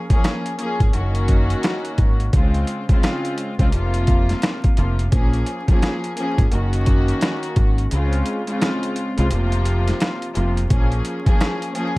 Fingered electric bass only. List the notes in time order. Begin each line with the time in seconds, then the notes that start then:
0.81 G#1
0.95 F#1
1.99 G#1
2.34 C#2
3.60 C2
3.74 F1
4.78 F1
5.13 A#1
6.39 G#1
6.53 F#1
7.57 G#1
7.92 C#2
9.18 C2
9.32 F1
10.36 F1
10.71 A#1